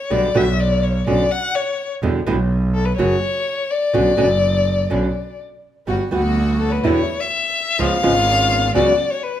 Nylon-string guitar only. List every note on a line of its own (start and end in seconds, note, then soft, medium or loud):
0.10 0.27 B2 medium
0.10 0.28 D3 medium
0.10 0.28 G3 medium
0.10 0.28 B3 medium
0.10 0.28 F#4 medium
0.35 0.44 B2 medium
0.35 0.44 D3 medium
0.35 0.44 G3 medium
0.35 0.44 B3 medium
0.35 0.44 F#4 medium
1.07 1.24 B2 medium
1.07 1.24 D3 medium
1.07 1.24 B3 medium
1.07 1.24 C#4 medium
1.07 1.24 F#4 medium
2.03 2.19 B2 medium
2.03 2.19 D3 medium
2.03 2.19 G3 medium
2.03 2.20 B3 medium
2.03 2.20 E4 medium
2.26 2.35 B2 medium
2.26 2.35 D3 medium
2.26 2.36 G3 medium
2.26 2.36 B3 medium
2.26 2.36 E4 medium
2.98 3.15 C#3 medium
2.98 3.15 F#3 medium
2.98 3.15 A#3 medium
2.98 3.15 C#4 medium
2.98 3.16 F#4 medium
3.93 4.11 B2 medium
3.93 4.11 D3 medium
3.93 4.11 B3 medium
3.93 4.11 C#4 medium
3.93 4.11 F#4 medium
4.17 4.27 B2 medium
4.17 4.27 D3 medium
4.17 4.27 B3 medium
4.17 4.27 C#4 medium
4.17 4.27 F#4 medium
4.90 5.07 B2 medium
4.90 5.07 D3 medium
4.90 5.07 B3 medium
4.90 5.07 C#4 medium
4.90 5.08 F#4 medium
5.87 6.04 G3 medium
5.87 6.04 B3 medium
5.87 6.05 F#4 medium
6.11 6.20 G3 medium
6.11 6.20 B3 medium
6.11 6.21 F#4 medium
6.84 7.00 B2 medium
6.84 7.00 D3 medium
6.84 7.01 G3 medium
6.84 7.01 B3 medium
6.84 7.01 E4 medium
7.79 7.96 C#3 medium
7.79 7.96 F3 medium
7.79 7.96 G#3 medium
7.79 7.96 B3 medium
7.79 7.96 F4 medium
8.03 8.12 C#3 medium
8.03 8.12 F3 medium
8.03 8.12 G#3 medium
8.03 8.12 B3 medium
8.03 8.12 F4 medium
8.74 8.91 C#3 medium
8.74 8.92 F#3 medium
8.74 8.92 B3 medium
8.74 8.92 C#4 medium
8.74 8.92 F#4 medium